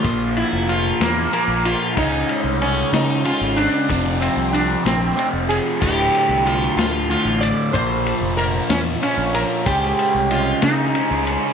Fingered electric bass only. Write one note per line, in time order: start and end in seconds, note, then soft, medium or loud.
0.04 0.42 A#1 medium
0.53 0.90 F1 medium
1.00 1.26 E2 medium
1.48 1.73 A#1 medium
1.97 2.22 C#2 loud
2.44 2.82 C2 medium
2.92 3.30 C#3 medium
3.41 3.66 G#1 loud
3.90 4.27 F1 medium
4.36 4.75 C2 loud
4.85 5.10 A#1 medium
5.33 5.59 F1 medium
5.82 6.07 D1 loud
6.29 6.67 C2 medium
6.76 7.15 D2 medium
7.25 7.50 A1 medium
7.74 8.12 A#1 medium
8.21 8.59 F1 loud
8.69 8.95 E2 medium
9.17 9.43 A#1 medium
9.66 9.91 C#2 loud
10.15 10.52 C2 medium
10.63 11.00 C#3 medium
11.11 11.36 C#2 loud